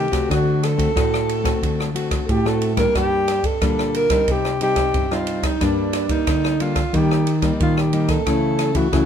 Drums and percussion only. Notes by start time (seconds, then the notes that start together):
0.13 kick, cross-stick, ride
0.31 kick, cross-stick, ride
0.63 cross-stick, ride
0.79 kick, ride
0.97 kick, cross-stick, ride
1.14 cross-stick
1.29 ride
1.45 kick, cross-stick, ride
1.63 kick, ride
1.80 cross-stick
1.96 ride
2.11 kick, cross-stick, ride
2.29 kick, ride
2.46 cross-stick
2.62 ride
2.77 kick, cross-stick, ride
2.95 kick, cross-stick, ride
3.28 cross-stick, ride
3.44 kick, ride
3.62 kick, cross-stick, ride
3.79 cross-stick
3.94 ride
4.10 kick, cross-stick, ride
4.28 kick, ride
4.45 cross-stick
4.61 ride
4.76 kick, cross-stick, ride
4.94 kick, ride
5.11 cross-stick
5.27 ride
5.43 kick, cross-stick, ride
5.61 kick, cross-stick, ride
5.93 cross-stick, ride
6.09 kick, ride
6.27 kick, cross-stick, ride
6.44 cross-stick
6.60 ride
6.76 kick, cross-stick, ride
6.94 kick, ride
7.11 cross-stick
7.27 ride
7.42 kick, cross-stick, ride
7.60 kick, ride
7.77 cross-stick
7.93 ride
8.08 kick, cross-stick, ride
8.27 kick, cross-stick, ride
8.59 cross-stick, ride
8.75 kick, ride
8.93 kick, cross-stick, ride